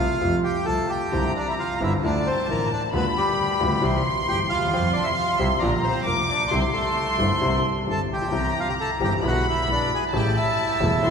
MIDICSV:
0, 0, Header, 1, 5, 480
1, 0, Start_track
1, 0, Tempo, 459067
1, 1175, Time_signature, 4, 2, 24, 8
1, 2133, Tempo, 449775
1, 11805, End_track
2, 0, Start_track
2, 0, Title_t, "Violin section"
2, 0, Program_c, 0, 48
2, 1157, Note_on_c, 0, 82, 79
2, 2081, Note_off_c, 0, 82, 0
2, 2116, Note_on_c, 0, 81, 80
2, 3042, Note_off_c, 0, 81, 0
2, 3085, Note_on_c, 0, 83, 89
2, 4045, Note_off_c, 0, 83, 0
2, 4047, Note_on_c, 0, 84, 91
2, 4964, Note_off_c, 0, 84, 0
2, 4976, Note_on_c, 0, 84, 95
2, 5896, Note_off_c, 0, 84, 0
2, 5932, Note_on_c, 0, 82, 90
2, 6406, Note_on_c, 0, 86, 93
2, 6417, Note_off_c, 0, 82, 0
2, 6862, Note_off_c, 0, 86, 0
2, 6899, Note_on_c, 0, 84, 91
2, 8602, Note_off_c, 0, 84, 0
2, 8841, Note_on_c, 0, 82, 87
2, 9764, Note_off_c, 0, 82, 0
2, 9800, Note_on_c, 0, 83, 93
2, 10751, Note_on_c, 0, 81, 95
2, 10770, Note_off_c, 0, 83, 0
2, 11675, Note_off_c, 0, 81, 0
2, 11727, Note_on_c, 0, 84, 106
2, 11805, Note_off_c, 0, 84, 0
2, 11805, End_track
3, 0, Start_track
3, 0, Title_t, "Bandoneon"
3, 0, Program_c, 1, 23
3, 0, Note_on_c, 1, 65, 69
3, 0, Note_on_c, 1, 77, 94
3, 410, Note_off_c, 1, 65, 0
3, 419, Note_off_c, 1, 77, 0
3, 460, Note_on_c, 1, 67, 69
3, 479, Note_on_c, 1, 79, 91
3, 681, Note_off_c, 1, 67, 0
3, 684, Note_on_c, 1, 69, 71
3, 691, Note_off_c, 1, 79, 0
3, 712, Note_on_c, 1, 81, 93
3, 913, Note_off_c, 1, 69, 0
3, 934, Note_on_c, 1, 67, 69
3, 951, Note_off_c, 1, 81, 0
3, 954, Note_on_c, 1, 79, 88
3, 1381, Note_off_c, 1, 67, 0
3, 1392, Note_off_c, 1, 79, 0
3, 1424, Note_on_c, 1, 62, 64
3, 1453, Note_on_c, 1, 74, 80
3, 1531, Note_off_c, 1, 62, 0
3, 1547, Note_off_c, 1, 74, 0
3, 1547, Note_on_c, 1, 64, 60
3, 1566, Note_on_c, 1, 76, 78
3, 1598, Note_off_c, 1, 64, 0
3, 1613, Note_off_c, 1, 76, 0
3, 1661, Note_on_c, 1, 65, 69
3, 1674, Note_on_c, 1, 77, 87
3, 1880, Note_off_c, 1, 65, 0
3, 1910, Note_off_c, 1, 77, 0
3, 1911, Note_on_c, 1, 64, 61
3, 1923, Note_on_c, 1, 76, 81
3, 2014, Note_off_c, 1, 64, 0
3, 2023, Note_off_c, 1, 76, 0
3, 2134, Note_on_c, 1, 62, 62
3, 2153, Note_on_c, 1, 74, 73
3, 2357, Note_off_c, 1, 62, 0
3, 2368, Note_on_c, 1, 60, 60
3, 2382, Note_on_c, 1, 72, 79
3, 2390, Note_off_c, 1, 74, 0
3, 2593, Note_off_c, 1, 60, 0
3, 2624, Note_off_c, 1, 72, 0
3, 2625, Note_on_c, 1, 58, 67
3, 2636, Note_on_c, 1, 70, 84
3, 2842, Note_off_c, 1, 58, 0
3, 2848, Note_off_c, 1, 70, 0
3, 2861, Note_on_c, 1, 62, 59
3, 2868, Note_on_c, 1, 74, 72
3, 2968, Note_off_c, 1, 62, 0
3, 2973, Note_off_c, 1, 74, 0
3, 3110, Note_on_c, 1, 59, 61
3, 3122, Note_on_c, 1, 71, 79
3, 3214, Note_off_c, 1, 59, 0
3, 3224, Note_off_c, 1, 71, 0
3, 3340, Note_on_c, 1, 55, 56
3, 3344, Note_on_c, 1, 67, 75
3, 4247, Note_off_c, 1, 55, 0
3, 4250, Note_off_c, 1, 67, 0
3, 4532, Note_on_c, 1, 79, 96
3, 4549, Note_on_c, 1, 67, 73
3, 4637, Note_off_c, 1, 79, 0
3, 4650, Note_off_c, 1, 67, 0
3, 4753, Note_on_c, 1, 77, 91
3, 4772, Note_on_c, 1, 65, 76
3, 5198, Note_off_c, 1, 77, 0
3, 5208, Note_off_c, 1, 65, 0
3, 5218, Note_on_c, 1, 74, 88
3, 5251, Note_on_c, 1, 62, 68
3, 5331, Note_on_c, 1, 76, 80
3, 5337, Note_off_c, 1, 74, 0
3, 5353, Note_on_c, 1, 64, 63
3, 5355, Note_off_c, 1, 62, 0
3, 5390, Note_off_c, 1, 76, 0
3, 5407, Note_off_c, 1, 64, 0
3, 5448, Note_on_c, 1, 77, 89
3, 5472, Note_on_c, 1, 65, 71
3, 5688, Note_on_c, 1, 76, 80
3, 5694, Note_off_c, 1, 65, 0
3, 5707, Note_off_c, 1, 77, 0
3, 5710, Note_on_c, 1, 64, 65
3, 5800, Note_off_c, 1, 76, 0
3, 5817, Note_off_c, 1, 64, 0
3, 5930, Note_on_c, 1, 74, 77
3, 5959, Note_on_c, 1, 62, 60
3, 6041, Note_off_c, 1, 74, 0
3, 6064, Note_off_c, 1, 62, 0
3, 6185, Note_on_c, 1, 72, 83
3, 6215, Note_on_c, 1, 60, 65
3, 6424, Note_off_c, 1, 60, 0
3, 6432, Note_off_c, 1, 72, 0
3, 6433, Note_on_c, 1, 70, 75
3, 6466, Note_on_c, 1, 58, 64
3, 6540, Note_off_c, 1, 70, 0
3, 6565, Note_off_c, 1, 58, 0
3, 6677, Note_on_c, 1, 74, 74
3, 6697, Note_on_c, 1, 62, 62
3, 6895, Note_off_c, 1, 74, 0
3, 6900, Note_on_c, 1, 72, 78
3, 6906, Note_off_c, 1, 62, 0
3, 6923, Note_on_c, 1, 60, 64
3, 7009, Note_off_c, 1, 72, 0
3, 7028, Note_off_c, 1, 60, 0
3, 7141, Note_on_c, 1, 69, 76
3, 7172, Note_on_c, 1, 57, 53
3, 8070, Note_off_c, 1, 69, 0
3, 8086, Note_off_c, 1, 57, 0
3, 8386, Note_on_c, 1, 69, 72
3, 8412, Note_on_c, 1, 81, 90
3, 8491, Note_off_c, 1, 69, 0
3, 8511, Note_off_c, 1, 81, 0
3, 8632, Note_on_c, 1, 67, 66
3, 8657, Note_on_c, 1, 79, 87
3, 9071, Note_off_c, 1, 67, 0
3, 9130, Note_off_c, 1, 79, 0
3, 9131, Note_on_c, 1, 65, 60
3, 9137, Note_on_c, 1, 77, 80
3, 9224, Note_off_c, 1, 65, 0
3, 9227, Note_off_c, 1, 77, 0
3, 9231, Note_on_c, 1, 67, 61
3, 9240, Note_on_c, 1, 79, 80
3, 9280, Note_off_c, 1, 67, 0
3, 9287, Note_off_c, 1, 79, 0
3, 9352, Note_on_c, 1, 69, 69
3, 9360, Note_on_c, 1, 81, 82
3, 9455, Note_off_c, 1, 69, 0
3, 9461, Note_off_c, 1, 81, 0
3, 9599, Note_on_c, 1, 67, 58
3, 9610, Note_on_c, 1, 79, 80
3, 9700, Note_off_c, 1, 67, 0
3, 9709, Note_off_c, 1, 79, 0
3, 9848, Note_on_c, 1, 66, 61
3, 9853, Note_on_c, 1, 78, 79
3, 10054, Note_off_c, 1, 66, 0
3, 10056, Note_off_c, 1, 78, 0
3, 10090, Note_on_c, 1, 76, 79
3, 10091, Note_on_c, 1, 64, 65
3, 10296, Note_off_c, 1, 64, 0
3, 10296, Note_off_c, 1, 76, 0
3, 10331, Note_on_c, 1, 62, 59
3, 10331, Note_on_c, 1, 74, 82
3, 10537, Note_off_c, 1, 62, 0
3, 10538, Note_off_c, 1, 74, 0
3, 10573, Note_on_c, 1, 68, 58
3, 10573, Note_on_c, 1, 80, 78
3, 10672, Note_off_c, 1, 68, 0
3, 10673, Note_off_c, 1, 80, 0
3, 10793, Note_on_c, 1, 79, 86
3, 10798, Note_on_c, 1, 67, 68
3, 11011, Note_off_c, 1, 67, 0
3, 11017, Note_on_c, 1, 76, 81
3, 11029, Note_on_c, 1, 64, 60
3, 11032, Note_off_c, 1, 79, 0
3, 11805, Note_off_c, 1, 64, 0
3, 11805, Note_off_c, 1, 76, 0
3, 11805, End_track
4, 0, Start_track
4, 0, Title_t, "Grand piano"
4, 0, Program_c, 2, 0
4, 0, Note_on_c, 2, 36, 76
4, 0, Note_on_c, 2, 48, 74
4, 0, Note_on_c, 2, 53, 57
4, 0, Note_on_c, 2, 57, 59
4, 0, Note_on_c, 2, 65, 69
4, 171, Note_off_c, 2, 36, 0
4, 171, Note_off_c, 2, 48, 0
4, 171, Note_off_c, 2, 57, 0
4, 172, Note_off_c, 2, 53, 0
4, 172, Note_off_c, 2, 65, 0
4, 217, Note_on_c, 2, 48, 60
4, 219, Note_on_c, 2, 53, 73
4, 221, Note_on_c, 2, 57, 58
4, 223, Note_on_c, 2, 41, 72
4, 227, Note_on_c, 2, 65, 67
4, 416, Note_off_c, 2, 48, 0
4, 418, Note_off_c, 2, 53, 0
4, 418, Note_off_c, 2, 57, 0
4, 419, Note_off_c, 2, 41, 0
4, 421, Note_off_c, 2, 65, 0
4, 696, Note_on_c, 2, 53, 38
4, 699, Note_on_c, 2, 48, 50
4, 701, Note_on_c, 2, 36, 49
4, 702, Note_on_c, 2, 57, 38
4, 705, Note_on_c, 2, 65, 45
4, 898, Note_off_c, 2, 53, 0
4, 900, Note_off_c, 2, 36, 0
4, 900, Note_off_c, 2, 48, 0
4, 900, Note_off_c, 2, 57, 0
4, 902, Note_off_c, 2, 65, 0
4, 1168, Note_on_c, 2, 50, 64
4, 1169, Note_on_c, 2, 36, 71
4, 1172, Note_on_c, 2, 55, 57
4, 1174, Note_on_c, 2, 64, 67
4, 1176, Note_on_c, 2, 60, 55
4, 1177, Note_on_c, 2, 48, 69
4, 1373, Note_off_c, 2, 50, 0
4, 1374, Note_off_c, 2, 36, 0
4, 1375, Note_off_c, 2, 55, 0
4, 1376, Note_off_c, 2, 64, 0
4, 1377, Note_off_c, 2, 60, 0
4, 1378, Note_off_c, 2, 48, 0
4, 1881, Note_on_c, 2, 50, 62
4, 1890, Note_on_c, 2, 31, 75
4, 1892, Note_on_c, 2, 43, 79
4, 1893, Note_on_c, 2, 55, 56
4, 1893, Note_on_c, 2, 64, 71
4, 1894, Note_on_c, 2, 60, 60
4, 2087, Note_off_c, 2, 50, 0
4, 2091, Note_off_c, 2, 31, 0
4, 2092, Note_off_c, 2, 43, 0
4, 2093, Note_off_c, 2, 55, 0
4, 2093, Note_off_c, 2, 64, 0
4, 2094, Note_off_c, 2, 60, 0
4, 2123, Note_on_c, 2, 53, 61
4, 2124, Note_on_c, 2, 50, 75
4, 2125, Note_on_c, 2, 38, 76
4, 2127, Note_on_c, 2, 64, 74
4, 2129, Note_on_c, 2, 57, 58
4, 2330, Note_off_c, 2, 53, 0
4, 2331, Note_off_c, 2, 38, 0
4, 2332, Note_off_c, 2, 50, 0
4, 2332, Note_off_c, 2, 64, 0
4, 2333, Note_off_c, 2, 57, 0
4, 2600, Note_on_c, 2, 50, 43
4, 2600, Note_on_c, 2, 53, 39
4, 2604, Note_on_c, 2, 45, 47
4, 2604, Note_on_c, 2, 57, 40
4, 2605, Note_on_c, 2, 33, 52
4, 2609, Note_on_c, 2, 64, 47
4, 2807, Note_off_c, 2, 50, 0
4, 2807, Note_off_c, 2, 53, 0
4, 2809, Note_off_c, 2, 45, 0
4, 2810, Note_off_c, 2, 33, 0
4, 2810, Note_off_c, 2, 57, 0
4, 2812, Note_off_c, 2, 64, 0
4, 3079, Note_on_c, 2, 50, 74
4, 3083, Note_on_c, 2, 38, 73
4, 3083, Note_on_c, 2, 55, 61
4, 3083, Note_on_c, 2, 59, 55
4, 3083, Note_on_c, 2, 65, 72
4, 3290, Note_off_c, 2, 38, 0
4, 3290, Note_off_c, 2, 50, 0
4, 3290, Note_off_c, 2, 55, 0
4, 3290, Note_off_c, 2, 59, 0
4, 3290, Note_off_c, 2, 65, 0
4, 3796, Note_on_c, 2, 38, 76
4, 3798, Note_on_c, 2, 50, 80
4, 3800, Note_on_c, 2, 55, 64
4, 3800, Note_on_c, 2, 59, 65
4, 3802, Note_on_c, 2, 65, 73
4, 4004, Note_off_c, 2, 38, 0
4, 4005, Note_off_c, 2, 50, 0
4, 4006, Note_off_c, 2, 55, 0
4, 4006, Note_off_c, 2, 59, 0
4, 4006, Note_off_c, 2, 65, 0
4, 4027, Note_on_c, 2, 52, 68
4, 4029, Note_on_c, 2, 36, 84
4, 4031, Note_on_c, 2, 55, 63
4, 4032, Note_on_c, 2, 48, 80
4, 4032, Note_on_c, 2, 60, 63
4, 4036, Note_on_c, 2, 67, 73
4, 4238, Note_off_c, 2, 52, 0
4, 4239, Note_off_c, 2, 36, 0
4, 4240, Note_off_c, 2, 48, 0
4, 4240, Note_off_c, 2, 55, 0
4, 4240, Note_off_c, 2, 60, 0
4, 4242, Note_off_c, 2, 67, 0
4, 4521, Note_on_c, 2, 52, 43
4, 4521, Note_on_c, 2, 55, 41
4, 4526, Note_on_c, 2, 43, 54
4, 4529, Note_on_c, 2, 31, 53
4, 4529, Note_on_c, 2, 60, 41
4, 4529, Note_on_c, 2, 67, 52
4, 4721, Note_off_c, 2, 55, 0
4, 4722, Note_off_c, 2, 52, 0
4, 4724, Note_off_c, 2, 43, 0
4, 4725, Note_off_c, 2, 31, 0
4, 4725, Note_off_c, 2, 60, 0
4, 4725, Note_off_c, 2, 67, 0
4, 4819, Note_on_c, 2, 38, 51
4, 4879, Note_off_c, 2, 38, 0
4, 4879, Note_on_c, 2, 39, 58
4, 4939, Note_off_c, 2, 39, 0
4, 4943, Note_on_c, 2, 40, 74
4, 5000, Note_off_c, 2, 40, 0
4, 5004, Note_on_c, 2, 53, 77
4, 5007, Note_on_c, 2, 55, 57
4, 5009, Note_on_c, 2, 60, 63
4, 5011, Note_on_c, 2, 67, 75
4, 5012, Note_on_c, 2, 41, 81
4, 5202, Note_off_c, 2, 55, 0
4, 5203, Note_off_c, 2, 53, 0
4, 5203, Note_off_c, 2, 60, 0
4, 5204, Note_off_c, 2, 41, 0
4, 5204, Note_off_c, 2, 67, 0
4, 5709, Note_on_c, 2, 48, 82
4, 5710, Note_on_c, 2, 36, 79
4, 5714, Note_on_c, 2, 53, 68
4, 5716, Note_on_c, 2, 55, 59
4, 5717, Note_on_c, 2, 60, 63
4, 5718, Note_on_c, 2, 67, 75
4, 5910, Note_off_c, 2, 36, 0
4, 5910, Note_off_c, 2, 48, 0
4, 5912, Note_off_c, 2, 53, 0
4, 5913, Note_off_c, 2, 55, 0
4, 5914, Note_off_c, 2, 60, 0
4, 5914, Note_off_c, 2, 67, 0
4, 5953, Note_on_c, 2, 46, 77
4, 5953, Note_on_c, 2, 50, 65
4, 5956, Note_on_c, 2, 34, 76
4, 5958, Note_on_c, 2, 53, 62
4, 5958, Note_on_c, 2, 65, 79
4, 5959, Note_on_c, 2, 58, 60
4, 6150, Note_off_c, 2, 46, 0
4, 6150, Note_off_c, 2, 50, 0
4, 6152, Note_off_c, 2, 34, 0
4, 6153, Note_off_c, 2, 53, 0
4, 6153, Note_off_c, 2, 58, 0
4, 6153, Note_off_c, 2, 65, 0
4, 6416, Note_on_c, 2, 41, 49
4, 6416, Note_on_c, 2, 53, 40
4, 6420, Note_on_c, 2, 29, 47
4, 6420, Note_on_c, 2, 50, 43
4, 6423, Note_on_c, 2, 65, 51
4, 6424, Note_on_c, 2, 58, 40
4, 6622, Note_off_c, 2, 41, 0
4, 6623, Note_off_c, 2, 53, 0
4, 6624, Note_off_c, 2, 29, 0
4, 6624, Note_off_c, 2, 50, 0
4, 6626, Note_off_c, 2, 58, 0
4, 6626, Note_off_c, 2, 65, 0
4, 6901, Note_on_c, 2, 50, 60
4, 6902, Note_on_c, 2, 36, 77
4, 6903, Note_on_c, 2, 48, 79
4, 6903, Note_on_c, 2, 60, 54
4, 6904, Note_on_c, 2, 55, 57
4, 6904, Note_on_c, 2, 64, 70
4, 7105, Note_off_c, 2, 50, 0
4, 7106, Note_off_c, 2, 36, 0
4, 7106, Note_off_c, 2, 48, 0
4, 7106, Note_off_c, 2, 60, 0
4, 7107, Note_off_c, 2, 55, 0
4, 7107, Note_off_c, 2, 64, 0
4, 7624, Note_on_c, 2, 31, 74
4, 7626, Note_on_c, 2, 55, 61
4, 7628, Note_on_c, 2, 43, 76
4, 7629, Note_on_c, 2, 50, 68
4, 7630, Note_on_c, 2, 60, 59
4, 7632, Note_on_c, 2, 64, 70
4, 7830, Note_off_c, 2, 31, 0
4, 7831, Note_off_c, 2, 55, 0
4, 7832, Note_off_c, 2, 43, 0
4, 7833, Note_off_c, 2, 50, 0
4, 7833, Note_off_c, 2, 60, 0
4, 7834, Note_off_c, 2, 64, 0
4, 7863, Note_on_c, 2, 55, 63
4, 7865, Note_on_c, 2, 60, 60
4, 7866, Note_on_c, 2, 50, 64
4, 7867, Note_on_c, 2, 36, 77
4, 7867, Note_on_c, 2, 64, 73
4, 7870, Note_on_c, 2, 48, 78
4, 8072, Note_off_c, 2, 55, 0
4, 8073, Note_off_c, 2, 60, 0
4, 8074, Note_off_c, 2, 36, 0
4, 8074, Note_off_c, 2, 50, 0
4, 8074, Note_off_c, 2, 64, 0
4, 8076, Note_off_c, 2, 48, 0
4, 8352, Note_on_c, 2, 43, 49
4, 8353, Note_on_c, 2, 31, 48
4, 8353, Note_on_c, 2, 50, 41
4, 8355, Note_on_c, 2, 55, 36
4, 8357, Note_on_c, 2, 60, 39
4, 8359, Note_on_c, 2, 64, 43
4, 8562, Note_off_c, 2, 31, 0
4, 8562, Note_off_c, 2, 43, 0
4, 8562, Note_off_c, 2, 50, 0
4, 8563, Note_off_c, 2, 55, 0
4, 8564, Note_off_c, 2, 60, 0
4, 8565, Note_off_c, 2, 64, 0
4, 8660, Note_on_c, 2, 33, 49
4, 8723, Note_on_c, 2, 34, 52
4, 8724, Note_off_c, 2, 33, 0
4, 8786, Note_off_c, 2, 34, 0
4, 8790, Note_on_c, 2, 35, 64
4, 8834, Note_on_c, 2, 52, 57
4, 8835, Note_on_c, 2, 48, 69
4, 8836, Note_on_c, 2, 36, 73
4, 8838, Note_on_c, 2, 60, 54
4, 8841, Note_on_c, 2, 55, 54
4, 8841, Note_on_c, 2, 67, 67
4, 8850, Note_off_c, 2, 35, 0
4, 9044, Note_off_c, 2, 52, 0
4, 9045, Note_off_c, 2, 36, 0
4, 9045, Note_off_c, 2, 48, 0
4, 9046, Note_off_c, 2, 60, 0
4, 9048, Note_off_c, 2, 55, 0
4, 9048, Note_off_c, 2, 67, 0
4, 9565, Note_on_c, 2, 52, 63
4, 9566, Note_on_c, 2, 43, 76
4, 9567, Note_on_c, 2, 60, 58
4, 9568, Note_on_c, 2, 31, 79
4, 9571, Note_on_c, 2, 55, 61
4, 9573, Note_on_c, 2, 67, 71
4, 9769, Note_off_c, 2, 43, 0
4, 9769, Note_off_c, 2, 52, 0
4, 9770, Note_off_c, 2, 60, 0
4, 9771, Note_off_c, 2, 31, 0
4, 9772, Note_off_c, 2, 55, 0
4, 9773, Note_off_c, 2, 67, 0
4, 9798, Note_on_c, 2, 56, 59
4, 9799, Note_on_c, 2, 50, 63
4, 9800, Note_on_c, 2, 47, 75
4, 9804, Note_on_c, 2, 35, 74
4, 9804, Note_on_c, 2, 59, 62
4, 9804, Note_on_c, 2, 64, 73
4, 10006, Note_off_c, 2, 50, 0
4, 10006, Note_off_c, 2, 56, 0
4, 10007, Note_off_c, 2, 47, 0
4, 10009, Note_off_c, 2, 35, 0
4, 10009, Note_off_c, 2, 59, 0
4, 10009, Note_off_c, 2, 64, 0
4, 10278, Note_on_c, 2, 50, 42
4, 10278, Note_on_c, 2, 59, 38
4, 10281, Note_on_c, 2, 47, 53
4, 10284, Note_on_c, 2, 35, 52
4, 10285, Note_on_c, 2, 56, 39
4, 10285, Note_on_c, 2, 64, 48
4, 10488, Note_off_c, 2, 50, 0
4, 10488, Note_off_c, 2, 59, 0
4, 10489, Note_off_c, 2, 47, 0
4, 10490, Note_off_c, 2, 35, 0
4, 10491, Note_off_c, 2, 56, 0
4, 10491, Note_off_c, 2, 64, 0
4, 10765, Note_on_c, 2, 57, 58
4, 10767, Note_on_c, 2, 49, 62
4, 10768, Note_on_c, 2, 45, 77
4, 10768, Note_on_c, 2, 55, 61
4, 10769, Note_on_c, 2, 33, 79
4, 10772, Note_on_c, 2, 64, 71
4, 10972, Note_off_c, 2, 57, 0
4, 10973, Note_off_c, 2, 45, 0
4, 10973, Note_off_c, 2, 49, 0
4, 10973, Note_off_c, 2, 55, 0
4, 10974, Note_off_c, 2, 33, 0
4, 10976, Note_off_c, 2, 64, 0
4, 11484, Note_on_c, 2, 40, 76
4, 11484, Note_on_c, 2, 49, 67
4, 11484, Note_on_c, 2, 55, 60
4, 11487, Note_on_c, 2, 28, 79
4, 11489, Note_on_c, 2, 57, 62
4, 11489, Note_on_c, 2, 64, 71
4, 11688, Note_off_c, 2, 40, 0
4, 11688, Note_off_c, 2, 49, 0
4, 11688, Note_off_c, 2, 55, 0
4, 11689, Note_off_c, 2, 28, 0
4, 11690, Note_off_c, 2, 64, 0
4, 11691, Note_off_c, 2, 57, 0
4, 11723, Note_on_c, 2, 53, 60
4, 11724, Note_on_c, 2, 50, 70
4, 11725, Note_on_c, 2, 64, 76
4, 11726, Note_on_c, 2, 45, 81
4, 11726, Note_on_c, 2, 57, 67
4, 11727, Note_on_c, 2, 33, 84
4, 11805, Note_off_c, 2, 33, 0
4, 11805, Note_off_c, 2, 45, 0
4, 11805, Note_off_c, 2, 50, 0
4, 11805, Note_off_c, 2, 53, 0
4, 11805, Note_off_c, 2, 57, 0
4, 11805, Note_off_c, 2, 64, 0
4, 11805, End_track
5, 0, Start_track
5, 0, Title_t, "Double bass"
5, 0, Program_c, 3, 43
5, 0, Note_on_c, 3, 36, 84
5, 176, Note_off_c, 3, 36, 0
5, 218, Note_on_c, 3, 41, 85
5, 417, Note_off_c, 3, 41, 0
5, 706, Note_on_c, 3, 36, 60
5, 902, Note_off_c, 3, 36, 0
5, 1175, Note_on_c, 3, 36, 86
5, 1377, Note_off_c, 3, 36, 0
5, 1895, Note_on_c, 3, 31, 83
5, 2094, Note_off_c, 3, 31, 0
5, 2136, Note_on_c, 3, 38, 85
5, 2336, Note_off_c, 3, 38, 0
5, 2612, Note_on_c, 3, 33, 62
5, 2813, Note_off_c, 3, 33, 0
5, 3085, Note_on_c, 3, 38, 89
5, 3291, Note_off_c, 3, 38, 0
5, 3818, Note_on_c, 3, 38, 86
5, 4015, Note_off_c, 3, 38, 0
5, 4052, Note_on_c, 3, 36, 87
5, 4250, Note_off_c, 3, 36, 0
5, 4539, Note_on_c, 3, 31, 59
5, 4730, Note_off_c, 3, 31, 0
5, 4765, Note_on_c, 3, 39, 53
5, 5000, Note_off_c, 3, 39, 0
5, 5011, Note_on_c, 3, 41, 96
5, 5204, Note_off_c, 3, 41, 0
5, 5719, Note_on_c, 3, 36, 88
5, 5915, Note_off_c, 3, 36, 0
5, 5959, Note_on_c, 3, 34, 88
5, 6153, Note_off_c, 3, 34, 0
5, 6433, Note_on_c, 3, 29, 58
5, 6631, Note_off_c, 3, 29, 0
5, 6910, Note_on_c, 3, 36, 91
5, 7110, Note_off_c, 3, 36, 0
5, 7627, Note_on_c, 3, 31, 84
5, 7832, Note_off_c, 3, 31, 0
5, 7875, Note_on_c, 3, 36, 83
5, 8078, Note_off_c, 3, 36, 0
5, 8352, Note_on_c, 3, 31, 56
5, 8562, Note_off_c, 3, 31, 0
5, 8616, Note_on_c, 3, 34, 50
5, 8844, Note_off_c, 3, 34, 0
5, 8850, Note_on_c, 3, 36, 85
5, 9052, Note_off_c, 3, 36, 0
5, 9577, Note_on_c, 3, 31, 83
5, 9775, Note_off_c, 3, 31, 0
5, 9819, Note_on_c, 3, 35, 91
5, 10016, Note_off_c, 3, 35, 0
5, 10300, Note_on_c, 3, 35, 56
5, 10498, Note_off_c, 3, 35, 0
5, 10772, Note_on_c, 3, 33, 92
5, 10976, Note_off_c, 3, 33, 0
5, 11483, Note_on_c, 3, 28, 90
5, 11688, Note_off_c, 3, 28, 0
5, 11728, Note_on_c, 3, 33, 87
5, 11805, Note_off_c, 3, 33, 0
5, 11805, End_track
0, 0, End_of_file